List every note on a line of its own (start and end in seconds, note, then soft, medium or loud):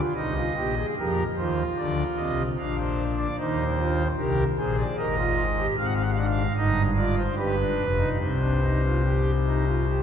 0.00 0.13 F4 medium
0.16 0.41 C2 medium
0.16 0.41 C3 medium
0.16 0.33 D#4 medium
0.16 0.86 D#5 medium
0.37 0.54 F4 medium
0.57 0.82 A#1 medium
0.57 0.82 A#2 medium
0.57 0.74 G4 medium
0.77 0.95 G#4 medium
0.98 1.23 F2 medium
0.98 1.23 F3 medium
0.98 1.23 G4 medium
0.98 1.23 A#4 medium
1.37 1.63 D#2 medium
1.37 1.62 D#3 medium
1.37 2.42 F4 medium
1.37 1.63 C5 medium
1.78 2.03 D2 medium
1.78 2.03 D3 medium
1.78 2.03 D5 medium
2.18 2.43 C2 medium
2.18 2.43 C3 medium
2.18 2.43 D#5 medium
2.59 3.28 A#1 medium
2.59 3.28 A#2 medium
2.59 3.28 D4 medium
2.59 2.76 F5 medium
2.79 3.04 C5 medium
3.19 3.36 D5 medium
3.39 4.08 D#2 medium
3.39 4.08 D#3 medium
3.39 3.64 D#4 medium
3.39 4.08 C5 medium
3.78 4.03 F4 medium
4.19 4.44 C2 medium
4.19 4.44 C3 medium
4.19 4.44 G4 medium
4.19 4.44 A#4 medium
4.59 4.84 A#1 medium
4.59 4.84 A#2 medium
4.59 4.84 G#4 medium
4.59 4.76 C5 medium
4.79 4.96 D5 medium
4.98 5.67 G#1 medium
4.98 5.67 G#2 medium
4.98 5.15 A#4 medium
4.98 5.67 D#5 medium
5.19 5.43 F4 loud
5.58 5.75 G4 medium
5.78 6.46 G#1 medium
5.78 6.46 G#2 medium
5.78 6.03 C4 medium
5.78 5.86 F5 medium
5.85 5.94 F#5 medium
5.94 6.02 F5 medium
6.03 6.10 F#5 medium
6.09 6.17 F5 medium
6.17 6.42 D4 medium
6.17 6.25 F#5 medium
6.24 6.52 F5 medium
6.57 7.27 G1 medium
6.57 7.27 G2 medium
6.57 6.82 D#4 loud
6.57 6.82 D#5 medium
6.97 7.23 F4 medium
6.97 7.15 D5 medium
7.17 7.35 C5 medium
7.37 7.63 G1 medium
7.37 7.63 G2 medium
7.37 7.55 G4 medium
7.37 8.09 B4 medium
7.58 7.84 D4 medium
7.78 8.05 F1 medium
7.78 8.04 F2 medium
7.99 8.17 D#4 medium
8.20 10.00 C2 medium
8.20 10.00 C3 medium
8.20 8.39 C4 medium
8.20 10.00 C5 medium
8.42 8.60 D4 medium
8.63 8.81 D#4 medium
8.84 9.02 F4 medium
9.05 9.31 G4 medium
9.47 9.65 D#4 medium
9.68 9.86 F4 medium
9.89 10.03 G4 medium